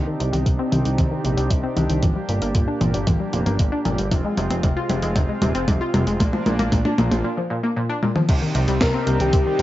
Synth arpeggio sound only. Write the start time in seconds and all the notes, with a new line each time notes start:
0.07 D#3
0.20 C3
0.33 G3
0.46 C3
0.59 C4
0.72 C3
0.85 D#3
0.98 C3
1.11 D#3
1.24 C3
1.37 G3
1.50 C3
1.63 C4
1.77 C3
1.90 D#3
2.03 A#2
2.16 G3
2.29 A#2
2.42 A#3
2.55 A#2
2.68 D4
2.81 A#2
2.94 G3
3.07 A#2
3.20 G3
3.33 A#2
3.46 A#3
3.59 A#2
3.72 D4
3.85 A#2
3.98 G3
4.11 C3
4.25 G#3
4.38 C3
4.51 C4
4.63 C3
4.77 F4
4.90 C3
5.03 G#3
5.16 C3
5.29 G#3
5.42 C3
5.55 C4
5.68 C3
5.81 F4
5.94 C3
6.07 G#3
6.20 A#2
6.33 F3
6.46 A#2
6.59 A#3
6.72 A#2
6.85 D4
6.98 A#2
7.11 F3
7.24 A#2
7.37 F3
7.50 A#2
7.63 A#3
7.76 A#2
7.89 D4
8.03 A#2
8.16 F3
8.29 C3
8.42 D#3
8.55 C3
8.68 G3
8.81 C3
8.94 C4
9.07 C3
9.21 D#3
9.34 C3
9.46 D#3